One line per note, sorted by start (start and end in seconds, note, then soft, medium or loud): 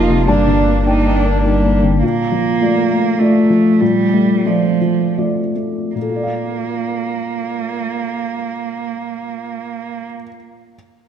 0.00 0.30 F1 medium
0.00 0.24 F2 medium
0.00 0.09 C3 soft
0.00 0.24 A#3 medium
0.00 0.31 A#3 soft
0.00 0.24 D#4 medium
0.00 0.28 F4 medium
0.00 0.30 F4 soft
0.00 0.30 A#4 soft
0.00 0.30 D#5 soft
0.00 0.24 A5 medium
0.00 0.31 C6 medium
0.00 0.30 D6 medium
0.09 0.28 C3 soft
0.27 2.03 G1 medium
0.27 1.98 G2 soft
0.27 0.85 A#3 soft
0.27 0.85 D4 soft
0.27 0.80 D4 soft
0.27 0.83 A5 medium
0.47 0.78 D3 soft
0.68 0.98 A#3 soft
0.86 1.80 A#3 soft
0.86 1.80 D4 soft
0.86 1.18 D#4 soft
0.86 1.41 G5 soft
1.06 1.37 D5 soft
1.16 1.45 D4 soft
1.25 1.56 A#4 soft
1.45 1.99 G3 soft
1.45 1.76 D#4 soft
1.65 1.95 A#3 soft
1.83 2.02 D3 soft
2.03 3.76 A#2 soft
2.03 3.20 A#3 medium
2.32 2.78 F3 soft
2.62 2.87 A3 soft
2.62 2.87 F4 soft
2.62 2.88 D5 soft
2.91 3.19 A3 soft
3.19 3.82 A3 medium
3.19 3.47 A3 soft
3.19 3.47 F4 soft
3.19 3.47 D5 soft
3.50 4.00 F3 soft
3.81 5.91 A#2 soft
3.81 4.48 G3 medium
4.13 4.44 A3 soft
4.46 5.18 F3 medium
4.46 4.77 A3 soft
4.46 4.77 F4 soft
4.46 4.78 D5 soft
4.81 5.40 F3 soft
5.18 5.52 A3 soft
5.18 5.52 F4 soft
5.18 5.52 D5 soft
5.56 5.95 A3 soft
5.95 10.06 A#2 soft
5.95 10.07 A#3 soft
6.02 10.13 A4 soft
6.09 10.20 F4 soft
6.16 10.27 D5 soft
6.23 10.35 F5 soft